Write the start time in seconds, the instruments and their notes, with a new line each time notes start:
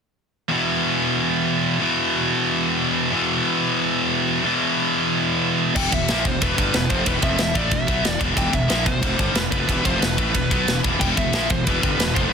0.49 distorted electric guitar E2 B2 E3
1.80 distorted electric guitar E2 B2 E3
3.11 distorted electric guitar E2 B2 E3
4.43 distorted electric guitar E2 B2 E3
5.76 fingered electric bass E1, distorted electric guitar E2 B2 E3, lead electric guitar G5, kick, crash
5.92 fingered electric bass E1, distorted electric guitar E2 B2, lead electric guitar E5, kick, ride
6.08 fingered electric bass A#1, distorted electric guitar A#2 F3 A#3, snare, ride
6.25 fingered electric bass E1, distorted electric guitar E2 B2, lead electric guitar C5, kick, ride
6.41 fingered electric bass E1, distorted electric guitar E2 B2 E3, lead electric guitar B4, kick, ride
6.56 fingered electric bass G1, distorted electric guitar G2 D3 G3, kick, ride
6.74 fingered electric bass E1, distorted electric guitar E2 B2, lead electric guitar B4, snare, ride
6.90 fingered electric bass F1, distorted electric guitar F2 C3 F3, lead electric guitar C5, kick, ride
7.05 fingered electric bass E1, distorted electric guitar E2 B2 E3, lead electric guitar B4, kick, ride
7.22 fingered electric bass F1, distorted electric guitar F2 C3 F3, lead electric guitar E5, kick, ride
7.38 fingered electric bass E1, distorted electric guitar E2 B2, snare, ride
7.54 fingered electric bass A1, distorted electric guitar A2 E3 A3, lead electric guitar D5, kick, ride
7.71 fingered electric bass E1, distorted electric guitar E2 B2, lead electric guitar E5, kick, ride
7.87 fingered electric bass B1, distorted electric guitar B2 F#3 B3, kick, ride
8.04 fingered electric bass E1, distorted electric guitar E2 B2, snare, ride
8.19 fingered electric bass E1, distorted electric guitar E2 B2 E3, kick, ride
8.35 fingered electric bass E1, distorted electric guitar E2 B2 E3, lead electric guitar G5, kick, ride
8.51 fingered electric bass E1, distorted electric guitar E2 B2, lead electric guitar E5, kick, ride
8.68 fingered electric bass A#1, distorted electric guitar A#2 F3 A#3, snare, ride
8.85 fingered electric bass E1, distorted electric guitar E2 B2, lead electric guitar C5, kick, ride
9.02 fingered electric bass E1, distorted electric guitar E2 B2 E3, kick, ride
9.18 fingered electric bass G1, distorted electric guitar G2 D3 G3, kick, ride
9.34 fingered electric bass E1, distorted electric guitar E2 B2, lead electric guitar B4, snare, ride
9.51 fingered electric bass F1, distorted electric guitar F2 C3 F3, lead electric guitar B4, kick, ride
9.68 fingered electric bass E1, distorted electric guitar E2 B2 E3, kick, ride
9.84 fingered electric bass F1, distorted electric guitar F2 C3 F3, lead electric guitar C5, kick, ride
10.00 fingered electric bass E1, distorted electric guitar E2 B2, lead electric guitar B4, snare, ride
10.17 fingered electric bass A1, distorted electric guitar A2 E3 A3, kick, ride
10.33 fingered electric bass E1, distorted electric guitar E2 B2, kick, ride
10.50 fingered electric bass B1, distorted electric guitar B2 F#3 B3, kick, ride
10.66 fingered electric bass E1, distorted electric guitar E2 B2, snare, ride
10.83 fingered electric bass E1, distorted electric guitar E2 B2 E3, kick, ride
10.99 fingered electric bass E1, distorted electric guitar E2 B2 E3, lead electric guitar G5, kick, crash
11.17 fingered electric bass E1, distorted electric guitar E2 B2, lead electric guitar E5, kick, ride
11.32 fingered electric bass A#1, distorted electric guitar A#2 F3 A#3, snare, ride
11.49 fingered electric bass E1, distorted electric guitar E2 B2, lead electric guitar C5, kick, ride
11.65 fingered electric bass E1, distorted electric guitar E2 B2 E3, lead electric guitar B4, kick, ride
11.82 fingered electric bass G1, distorted electric guitar G2 D3 G3, kick, ride
11.98 fingered electric bass E1, distorted electric guitar E2 B2, lead electric guitar B4, snare, ride
12.15 fingered electric bass F1, distorted electric guitar F2 C3 F3, lead electric guitar C5, kick, ride
12.29 lead electric guitar B4